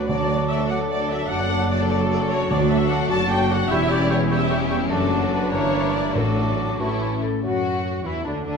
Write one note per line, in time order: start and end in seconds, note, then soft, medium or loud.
0.00 1.26 D2 medium
0.00 2.41 F#3 soft
0.00 0.11 B3 medium
0.00 0.18 D4 medium
0.00 0.28 F#4 medium
0.00 0.10 B4 medium
0.00 0.11 B4 soft
0.00 0.58 F#5 medium
0.00 0.11 B5 medium
0.08 1.32 D3 medium
0.08 0.66 D3 medium
0.08 0.68 F#3 medium
0.08 2.47 F#3 medium
0.08 0.18 A3 medium
0.08 2.47 D4 medium
0.08 0.18 F#4 medium
0.08 0.72 F#4 medium
0.08 0.18 D5 soft
0.08 0.48 D5 loud
0.08 0.69 A5 medium
0.08 0.68 D6 medium
0.19 0.29 D4 medium
0.19 1.09 D4 soft
0.19 0.29 A4 soft
0.19 0.29 A4 medium
0.29 0.39 A3 medium
0.29 0.39 F#4 medium
0.29 0.99 F#4 medium
0.29 0.39 D5 medium
0.38 0.49 D4 medium
0.38 0.48 A4 soft
0.38 1.70 A4 medium
0.38 0.49 A4 medium
0.48 0.59 A3 medium
0.48 0.59 F#4 medium
0.48 0.58 D5 medium
0.48 0.68 E5 medium
0.59 0.70 D4 medium
0.59 0.69 A4 medium
0.69 1.29 F#3 medium
0.69 0.80 A3 medium
0.69 0.80 F#4 medium
0.69 1.29 A4 medium
0.69 0.79 D5 medium
0.69 0.77 F#5 medium
0.69 1.29 A5 medium
0.69 1.29 D6 medium
0.80 0.90 D4 medium
0.80 0.90 A4 medium
0.80 1.90 F#5 medium
0.89 0.99 A3 soft
0.89 0.99 F#4 soft
0.89 1.09 D5 medium
0.89 1.00 D5 medium
1.00 1.10 D4 medium
1.00 1.60 F#4 medium
1.00 1.10 A4 medium
1.09 1.20 A3 medium
1.09 1.50 D4 medium
1.09 1.20 F#4 medium
1.09 1.20 D5 medium
1.09 1.30 E5 loud
1.20 1.40 A3 medium
1.20 1.30 D4 medium
1.20 1.30 A4 medium
1.29 2.48 F#1 medium
1.29 2.48 F#2 medium
1.29 2.52 F#2 medium
1.29 1.89 F#3 medium
1.29 1.40 A3 medium
1.29 1.89 D4 medium
1.29 1.40 F#4 medium
1.29 1.40 D5 medium
1.29 1.70 F#5 loud
1.29 1.89 A5 medium
1.29 1.89 D6 medium
1.40 2.30 A3 medium
1.40 1.50 D4 medium
1.40 1.50 A4 medium
1.50 1.60 A3 medium
1.50 2.20 D4 medium
1.50 1.61 F#4 medium
1.50 1.60 D5 medium
1.60 1.70 D4 medium
1.60 2.70 F#4 medium
1.60 1.70 A4 medium
1.69 1.80 A3 medium
1.69 1.80 F#4 medium
1.69 2.10 A4 medium
1.69 1.90 D5 loud
1.69 1.80 D5 medium
1.80 1.90 D4 medium
1.80 1.90 A4 medium
1.80 1.91 A4 medium
1.89 2.50 F#3 medium
1.89 2.00 A3 medium
1.89 3.08 F#4 loud
1.89 2.00 F#4 medium
1.89 2.30 A4 loud
1.89 2.00 D5 medium
1.89 3.01 F#5 medium
1.89 2.50 A5 medium
1.89 2.28 D6 medium
2.00 2.10 D4 medium
2.00 2.10 A4 medium
2.10 2.20 A3 medium
2.10 2.20 F#4 medium
2.10 2.20 D5 medium
2.20 2.31 D4 medium
2.20 2.61 D4 medium
2.20 2.31 A4 medium
2.30 2.41 A3 medium
2.30 3.60 A3 medium
2.30 2.41 F#4 medium
2.30 2.50 C#5 loud
2.30 2.41 D5 medium
2.41 3.73 F#3 medium
2.41 2.50 D4 medium
2.41 2.49 A4 medium
2.41 2.51 A4 medium
2.50 3.07 D2 medium
2.50 3.07 D3 loud
2.50 3.73 D3 medium
2.50 2.60 F#3 medium
2.50 3.68 F#3 medium
2.50 3.68 D4 medium
2.50 3.67 D4 medium
2.50 3.67 F#4 medium
2.50 3.67 A4 medium
2.50 2.70 D5 loud
2.50 2.59 A5 medium
2.50 2.57 D6 medium
2.62 3.51 D4 medium
2.70 2.79 F#3 medium
2.70 3.41 F#4 medium
2.70 2.90 E5 loud
2.70 2.80 A5 medium
2.70 2.77 D6 medium
2.82 3.73 A4 medium
2.90 3.00 F#3 medium
2.90 3.11 F#5 loud
2.90 3.00 A5 medium
2.90 2.96 D6 medium
3.02 3.21 F#5 medium
3.10 3.69 F#1 medium
3.10 3.69 F#2 medium
3.10 3.20 F#3 medium
3.10 3.72 F#4 medium
3.10 3.30 A5 loud
3.10 3.20 A5 medium
3.10 3.17 D6 medium
3.22 3.73 F#5 medium
3.30 3.40 F#3 medium
3.30 3.50 G5 loud
3.30 3.39 A5 medium
3.30 3.37 D6 medium
3.42 3.73 F#4 medium
3.50 3.60 F#3 medium
3.50 3.73 D4 medium
3.50 3.70 F#5 loud
3.50 3.59 A5 medium
3.50 3.57 D6 medium
3.62 3.73 A3 medium
3.70 4.88 E1 medium
3.70 4.88 E2 medium
3.70 4.93 E3 medium
3.70 4.88 G3 medium
3.70 3.80 G3 medium
3.70 4.90 C#4 medium
3.70 4.29 C#4 medium
3.70 4.63 E4 medium
3.70 4.29 E4 medium
3.70 4.29 G4 medium
3.70 3.90 E5 loud
3.70 3.79 G5 medium
3.70 3.77 C#6 medium
3.82 4.00 C#4 medium
3.90 3.99 G3 medium
3.90 4.60 G4 medium
3.90 4.10 D5 loud
3.90 3.99 G5 medium
3.90 3.97 C#6 medium
4.01 4.70 C#4 medium
4.10 4.20 G3 medium
4.10 4.18 C#5 loud
4.10 4.19 G5 medium
4.10 4.16 C#6 medium
4.29 4.40 G3 medium
4.29 4.89 C#4 medium
4.29 4.89 E4 medium
4.29 4.89 G4 medium
4.29 4.69 E5 loud
4.29 4.40 G5 medium
4.29 4.37 C#6 medium
4.41 4.92 G5 medium
4.50 4.60 G3 medium
4.50 4.92 C#5 medium
4.50 4.59 G5 medium
4.50 4.56 C#6 medium
4.61 4.92 G4 medium
4.70 4.80 G3 medium
4.70 4.92 C#4 medium
4.70 4.80 G5 medium
4.70 4.76 C#6 medium
4.81 4.92 G3 medium
4.90 5.52 F#1 medium
4.90 5.52 F#2 medium
4.90 5.54 F#2 medium
4.90 5.36 F#3 medium
4.90 5.54 F#3 medium
4.90 5.52 A3 medium
4.90 5.51 D4 medium
4.90 6.11 D4 medium
4.90 6.76 D4 medium
4.90 5.52 F#4 medium
4.90 5.29 A4 loud
4.90 5.54 A5 medium
4.90 5.48 D6 medium
5.01 5.54 A3 medium
5.11 5.72 D4 medium
5.21 5.54 F#4 medium
5.32 5.54 A4 medium
5.32 5.52 B4 medium
5.52 6.15 G1 medium
5.52 6.15 G2 medium
5.52 6.17 G2 medium
5.52 6.14 E3 medium
5.52 6.15 A#3 medium
5.52 6.14 D4 medium
5.52 6.14 E4 medium
5.52 6.15 A#4 medium
5.52 5.94 C#5 loud
5.52 6.14 D6 medium
5.63 6.17 A#3 medium
5.84 6.17 E4 soft
5.94 6.17 A#4 medium
5.94 6.15 D5 loud
6.14 6.78 A1 medium
6.14 6.78 A2 medium
6.14 6.75 A2 loud
6.14 6.78 F#3 medium
6.14 6.80 F#3 medium
6.14 6.79 A3 medium
6.14 6.78 D4 medium
6.14 6.74 F#4 medium
6.14 6.80 F#4 medium
6.14 6.79 A4 medium
6.14 6.78 A5 medium
6.14 6.81 D6 medium
6.26 6.89 A3 medium
6.58 7.22 A4 medium
6.79 7.22 A1 medium
6.79 7.45 A2 medium
6.79 7.22 A2 medium
6.79 7.21 E3 medium
6.79 7.23 E3 medium
6.79 7.22 A3 medium
6.79 7.22 C#4 medium
6.79 7.23 C#4 medium
6.79 7.22 E4 medium
6.79 6.89 F#4 medium
6.79 7.21 A5 medium
6.79 7.22 C#6 medium
6.91 7.53 A3 medium
7.01 7.45 C#4 medium
7.01 7.10 E4 medium
7.12 7.45 E4 soft
7.22 7.43 A4 medium
7.22 7.83 A4 medium
7.43 8.01 F#2 medium
7.43 8.57 D3 soft
7.43 8.01 F#3 medium
7.43 8.01 F#4 medium
7.43 8.07 F#4 medium
7.43 8.06 F#4 medium
7.43 8.01 F#4 medium
7.43 8.02 F#4 medium
7.43 8.01 F#5 medium
7.54 8.54 A3 soft
7.65 8.44 D4 soft
8.05 8.25 E2 medium
8.05 8.13 E3 medium
8.05 8.14 E3 soft
8.05 8.24 E4 medium
8.05 8.25 E4 medium
8.05 8.25 E5 soft
8.05 8.24 F#5 soft
8.15 8.57 A5 soft
8.25 8.44 D2 medium
8.25 8.44 D3 soft
8.25 8.45 D3 medium
8.25 8.33 D4 medium
8.25 8.34 D4 medium
8.25 8.43 D4 soft
8.25 8.45 D4 medium
8.25 8.44 D4 medium
8.25 8.44 D4 soft
8.25 8.32 D5 medium
8.25 8.57 F#5 soft
8.35 8.57 A4 soft
8.44 8.53 D2 medium
8.44 8.57 D3 medium
8.44 8.57 D4 medium
8.44 8.53 D4 medium
8.44 8.57 D4 medium
8.44 8.57 D4 soft
8.44 8.57 D4 medium
8.44 8.57 D5 medium